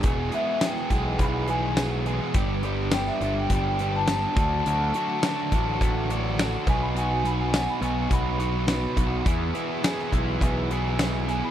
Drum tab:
HH |x-x-x-x-x-x-x-x-|x-x-x-x-x-x-x-x-|x-x-x-x-x-x-x-x-|x-x-x-x-x-x-x-x-|
TB |----x-------x---|----x-------x---|----x-------x---|----x-------x---|
SD |----oo------o---|----oo------o---|----o-------o---|----o-------o---|
BD |o-----o-o-------|o-------o-----o-|------o-o-----o-|--------o-----o-|

HH |x-x-x-x-x-x-x-x-|
TB |----x-------x---|
SD |----oo------o---|
BD |o-----o-o-------|